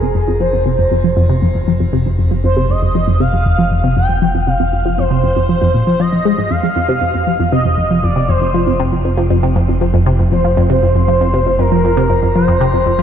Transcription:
Already playing: F1 G#4
0.02 C3
0.15 F2
0.28 F2
0.40 F3 C5
0.53 F2
0.66 C3
0.79 F2
0.91 F2
1.04 F3
1.17 F2
1.29 C3
1.42 F2
1.55 F2
1.68 F3
1.80 F2
1.93 C3
2.06 F2
2.18 F2
2.31 F3
2.44 F2 C5
2.57 C3
2.69 F2 D#5
2.82 F2
2.95 F3
3.08 F2
3.20 C3 F5
3.33 F2
3.46 F2
3.58 F3
3.71 F2
3.84 C3
3.97 F2 G5
4.09 F2
4.22 F3
4.34 F2
4.47 C3 F5
4.60 F2
4.73 F2
4.85 F3
4.98 F2 C5
5.11 C3
5.24 F2
5.36 F2
5.49 F3
5.62 F2
5.74 A#2
5.87 F3
6.00 F3 D#5
6.13 F3
6.25 G#3
6.38 G#2
6.50 F1 F2 F5
6.63 F3
6.76 F2
6.89 C3
7.01 F2
7.14 F2
7.27 F3
7.40 F2
7.52 C3 D#5
7.65 F2
7.78 F2
7.91 F3
8.03 F2 D5
8.16 C3
8.28 F2 C5
8.41 F2
8.54 F3
8.67 F2
8.80 C3
8.92 F2
9.05 F2
9.17 F3
9.30 F2
9.43 C3
9.56 F2
9.69 F2
9.81 F3
9.94 F2
10.06 C3
10.19 F2
10.32 F2 C5
10.44 F3
10.57 F2
10.70 C3
10.83 F2
10.95 F2
11.08 F3
11.21 F2
11.34 C3
11.46 F2
11.59 F2 A#4
11.72 F3
11.84 F2
11.97 C3
12.10 F2
12.23 F2
12.35 F3 C5
12.48 F2
12.61 C3
12.74 F2
12.86 F2
12.99 F3

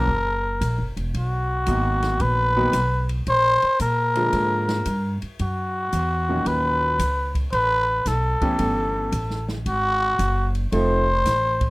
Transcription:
Already playing: A#4
0.08 F#1, kick
0.61 A#1, kick, hi-hat pedal, ride
0.78 F#1
0.97 E1, ride
1.14 B1 F#4, kick, ride
1.66 G#1 D#3 F#3 A#3 B3 F#4, kick, hi-hat pedal, ride
2.02 snare, ride
2.20 A#1 B4, kick, ride
2.56 D#3 F#3 A#3 B3 F#4
2.73 B1, kick, hi-hat pedal, ride
3.09 ride
3.27 A#1 C5, kick, ride
3.62 muted upright bass stroke, ride
3.80 A#2 A#4, kick, hi-hat pedal, ride
4.15 D3 F3 G#3 A#3 F4, ride
4.33 G#2, kick, ride
4.69 snare, ride
4.85 G2, kick, hi-hat pedal, ride
5.22 muted upright bass stroke, ride
5.39 F#2 F#4, kick, ride
5.93 E2, kick, hi-hat pedal, ride
6.29 A#2 D#3 F#3 C#4 F#4
6.46 D#2 B4, kick, ride
6.99 C#2, kick, hi-hat pedal, ride
7.35 kick, ride
7.53 A1 B4, ride
8.06 B1 A4, kick, snare, hi-hat pedal, ride
8.41 E3 A3 B3 C#4 G4, muted upright bass stroke, kick, ride
8.59 G1, kick, ride
9.12 A1, kick, hi-hat pedal, ride
9.30 snare
9.49 snare
9.66 G#1 F#4, kick, ride
10.19 F#1, kick, hi-hat pedal, ride
10.55 ride
10.72 F1 F3 A3 C4 D#4 A4 C5, kick, ride
11.26 A1, kick, snare, hi-hat pedal, ride
11.61 kick, ride

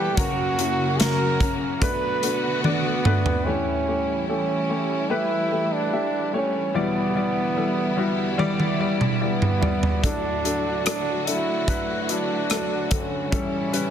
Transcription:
Already playing: E3 G3 B3 E4 G4 A4 B4
0.17 F#2 C#3 F#3 A#3 C#4 F#4 A#4, kick, closed hi-hat
0.58 F#3 C#4 E4, closed hi-hat
0.99 F#3 C#4 A#4, snare, closed hi-hat
1.40 F#3 C#4 A#4, kick, closed hi-hat
1.82 B2 D3 F#3 A3 B3 D4 F#4 B4, kick, closed hi-hat
2.22 A3 D4 F#4, closed hi-hat
2.64 A3 B3 D4 D5, high tom
3.05 A3 D4 B4, mid tom
3.26 floor tom
3.46 A2 E3 G3 A3 C#4 E4 G4 C#5
3.87 A3 G4 C#5
4.28 A3 C#4 G4 A4
4.69 A3 G4 C#5
5.10 A3 E4 G4 B4
5.51 A3 G4 A4
5.73 D4
5.92 A3 G4 E5
6.33 A3 C#4 G4 C#5
6.74 E2 B2 D3 G3 B3 E4 D5
7.15 G3 E4 D5
7.56 G3 E4 A4
7.97 G3 E4 F#4
8.38 G3 E4 D5, high tom
8.60 high tom
8.80 G3 E4 D5
9.01 mid tom
9.21 G3 B3 E4 D5
9.42 mid tom
9.61 G3 E4 D5, floor tom
9.83 floor tom
10.02 D2 A2 F#3 A3 D4 F#4 A4, kick, closed hi-hat
10.44 F#3 D4 A4, closed hi-hat
10.85 F#3 D4 A4, cross-stick, closed hi-hat
11.26 F#3 D4 E4 A4, closed hi-hat
11.67 F#3 D4 B4, kick, closed hi-hat
12.03 E4
12.08 F#3 D4 E4, closed hi-hat
12.50 F#3 D4 A4, cross-stick, closed hi-hat
12.90 D3 F#3 C#4 A4, kick, closed hi-hat
13.32 A2 C#3 E3 G3 C#4 E4 A4, kick, closed hi-hat
13.72 G3 C#4 B4, closed hi-hat

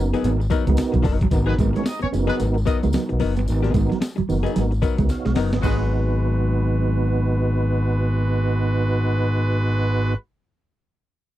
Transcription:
Already playing: F#1 B3 D#4 F#4 A#4
0.14 F#3 B3 D#4 G#4, closed hi-hat, tambourine
0.24 G#1 B3, closed hi-hat, tambourine
0.40 muted hollow-body jazz guitar stroke, tambourine
0.50 F#3 B3 D#4 A#4, muted clean electric guitar stroke, kick, closed hi-hat, tambourine
0.66 C#2 G#3 B3 D#4 F#4 A#4, muted hollow-body jazz guitar stroke, kick, closed hi-hat
0.77 muted hollow-body jazz guitar stroke, snare, closed hi-hat, tambourine
0.92 B1 F#3, muted hollow-body jazz guitar stroke, kick, closed hi-hat
1.02 F#1 F#3 B3 D#4 A#4, muted clean electric guitar stroke, kick, open hi-hat, tambourine
1.19 G1, muted hollow-body jazz guitar stroke, kick, closed hi-hat
1.23 F#3
1.30 G#1 B3 D#4 F#4 A#4, muted hollow-body jazz guitar stroke, kick, closed hi-hat, tambourine
1.46 F#3 B3 D#4 G#4 B4, muted clean electric guitar stroke, snare
1.57 G#1 G#3, muted hollow-body jazz guitar stroke, kick, closed hi-hat, tambourine
1.73 G#3 C#4 C#5, muted hollow-body jazz guitar stroke, snare, closed hi-hat
1.84 D#4 D#5, muted hollow-body jazz guitar stroke, muted clean electric guitar stroke, snare, closed hi-hat, tambourine
1.99 B3 C#4 C#5, muted hollow-body jazz guitar stroke, muted fingered electric bass stroke, closed hi-hat
2.12 F#1 B3 C#4 D#4 F#4 G#4, snare, closed hi-hat, tambourine
2.19 A#4
2.27 F#3 B3 D#4 G#4 B4, closed hi-hat, tambourine
2.40 G#1 B3, closed hi-hat, tambourine
2.54 muted hollow-body jazz guitar stroke, tambourine
2.65 F#3 B3 D#4 A#4 D#5, muted clean electric guitar stroke, kick, closed hi-hat, tambourine
2.81 C#2 G#3 B3 D#4 F#4 A#4, muted hollow-body jazz guitar stroke, closed hi-hat, tambourine
2.93 F#3, snare, closed hi-hat, tambourine
3.09 B1, muted hollow-body jazz guitar stroke, muted clean electric guitar stroke, closed hi-hat
3.20 F#1 F#3 B3 D#4 A#4, open hi-hat, tambourine
3.36 G1 B3, muted hollow-body jazz guitar stroke, closed hi-hat, tambourine
3.46 G#1 B3 D#4 F#4 A#4, muted hollow-body jazz guitar stroke, closed hi-hat, tambourine
3.63 F#3 B3 D#4 G#4, muted clean electric guitar stroke, snare, closed hi-hat
3.73 G#1 G#3, muted hollow-body jazz guitar stroke, kick, closed hi-hat, tambourine
3.89 F#3, muted hollow-body jazz guitar stroke, snare, closed hi-hat
4.00 muted hollow-body jazz guitar stroke, muted clean electric guitar stroke, snare, closed hi-hat, tambourine
4.16 F#3, muted hollow-body jazz guitar stroke, muted fingered electric bass stroke, closed hi-hat
4.28 F#1 D#3 B3 D#4 F#4 A#4, open hi-hat, tambourine
4.43 F#3 B3 D#4 G#4, closed hi-hat, tambourine
4.56 G#1 F#3, snare, closed hi-hat, tambourine
4.71 muted hollow-body jazz guitar stroke, closed hi-hat, tambourine
4.82 F#3 B3 D#4 A#4, muted clean electric guitar stroke, kick, closed hi-hat, tambourine
4.98 C#2 G#3 B3 D#4 F#4 A#4, muted hollow-body jazz guitar stroke, kick, closed hi-hat, tambourine
5.08 C#5 F5, muted hollow-body jazz guitar stroke, snare, closed hi-hat, tambourine
5.25 B1 G#3, muted hollow-body jazz guitar stroke, snare, closed hi-hat
5.35 F#1 F#3 B3 D#4 A#4 D#5 F#5, snare, open hi-hat, tambourine
5.51 G1 B3 B4 D#5, muted hollow-body jazz guitar stroke, snare, closed hi-hat
5.61 G#1 F#3 G#3 B3 D#4 F#4 B4, kick, tambourine, crash
5.66 G#4

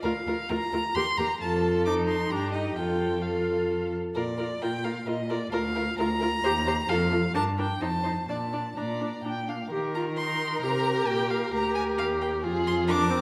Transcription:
0.03 D2 F4 A#4 F5
0.27 D2 F4 A#4
0.49 D2 F4 A#4 A#5
0.72 D2 F4 A#4
0.95 D#2 G4 A#4 C6
1.18 D#2 G4 A#4 A#5
1.40 F2 F4 A4 A5
1.85 D#4 D6
2.07 C6
2.30 G2 D4 G4 A#5
2.52 D#4 D#5
2.76 F2 F4 A4 G5
3.22 F4 A4 F5
4.15 A#2 F4 A#4 D5
4.37 F4 A#4
4.62 A#2 F4 A#4 G5
4.83 F4 A#4 F5
5.06 A#2 F4 A#4 D#5
5.29 F4 A#4 D5
5.52 D2 F4 A#4 F5
5.75 F4 A#4
5.98 D2 F4 A#4 A#5
6.20 F4 A#4
6.43 D#2 G4 C5
6.66 G4 C5
6.89 F2 F4 A4 F5
7.11 F4 A4
7.35 G2 D4 A#4 A5
7.58 D4 A#4 G5
7.81 F2 D#4 C5 A5
8.03 D#4 C5
8.28 A#2 D4 D5 A5
8.53 D4 D5
8.76 A#2 D4 D5 A#5
9.00 D4
9.24 A#2 D4 G5
9.48 D4 F5
9.71 D#3 G4 A#4
9.95 F4 A#5
10.17 D#4 C6
10.62 C3 G4 A#5
11.07 A#2 G5
11.30 F5
11.53 D2 G4 A#5
11.74 G#5
11.98 D#2 F5
12.21 G5
12.44 F2 F4 G#4
12.67 C6
12.88 D4 A#4 D6
13.11 C4

